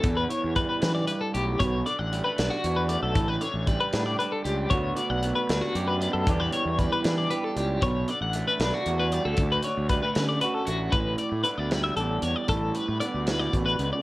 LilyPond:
<<
  \new Staff \with { instrumentName = "Clean electric guitar" } { \time 6/8 \key a \mixolydian \tempo 4. = 77 a'16 b'16 cis''8 b'16 b'8 d''16 b'16 a'16 g'8 | cis''8 d''16 fis''8 b'8 fis'8 b'16 d''16 a'16~ | a'16 b'16 cis''8 b'16 b'8 d''16 b'16 a'16 g'8 | cis''8 d''16 fis''8 b'8 fis'8 b'16 d''16 a'16~ |
a'16 b'16 cis''8 b'16 b'8 d''16 b'16 a'16 g'8 | cis''8 d''16 fis''8 b'8 fis'8 b'16 d''16 a'16~ | a'16 b'16 cis''8 b'16 b'8 d''16 b'16 a'16 fis'8 | b'8 d''8 b'16 d''16 b'16 e''16 a'8 cis''16 d''16 |
a'8 b'8 d''8 b'16 d''8 b'8 d''16 | }
  \new Staff \with { instrumentName = "Clean electric guitar" } { \clef bass \time 6/8 \key a \mixolydian << { r4 g2 | r4 g16 a16 d'8 fis'8 a8 | r4 g8 d'8 d'8 g8 | <d b d' fis'>4 b8 d'8 g'8 b8 |
<e g d' g'>4 g8 d'8 g'8 g8 | r4 a8 d'8 fis'8 g16 a16 | r4 g16 a16 cis'8 fis'8 a8 | r4 a16 b16 g8 d'4~ |
d'4 b2 | } \\ { <e, d>8 e4 fis,8 g,8 a,8 | b,8 d2~ d8 | a,8 d2~ d8 | d,8 d2~ d8 |
e,8 e2~ e8 | b,8 d2~ d8 | d,8 d2~ d8 | a,4 d4 e,4 |
a,4 d8 a,8 b,8 cis8 | } >> }
  \new Staff \with { instrumentName = "Fingered electric bass" } { \clef bass \time 6/8 \key a \mixolydian e,8 r16 e,8 r16 e8 r8 b,,8 | b,,8 r16 a,,8 r16 b,,16 r16 e,8. b,,16 | a,,8 r16 a,,8 r16 a,8 r8 cis,8 | d,8 r16 b,,8 r16 d,16 r16 fis,8. fis,16 |
e,8 r16 e,8 r16 e8 r8 cis,8 | b,,8 r16 a,,8 r16 b,,16 r16 e,8. d,16 | d,8 r16 d,8 r16 d8 r8 a,,8 | a,,8 r16 a,16 r16 d,8. a,,8 e,16 r16 |
a,,8 r16 a,16 r16 d,8. a,,8 cis,16 r16 | }
  \new DrumStaff \with { instrumentName = "Drums" } \drummode { \time 6/8 <hh bd>8 hh8 <hh bd>8 <hh sn>8 hh8 hh8 | <hh bd>8 hh8 hh8 <hh sn>8 hh8 hh8 | <hh bd>8 hh8 <hh bd>8 <hh sn>8 hh8 hh8 | <hh bd>8 hh8 hh8 <hh sn>8 hh8 hh8 |
<hh bd>8 hh8 <hh bd>8 <hh sn>8 hh8 hh8 | <hh bd>8 hh8 hh8 <hh sn>8 hh8 hh8 | <hh bd>8 hh8 <hh bd>8 <hh sn>8 hh8 hh8 | <hh bd>8 hh8 hh8 <hh sn>8 hh8 hh8 |
<hh bd>8 hh8 hh8 <hh sn>8 <hh bd>8 hh8 | }
>>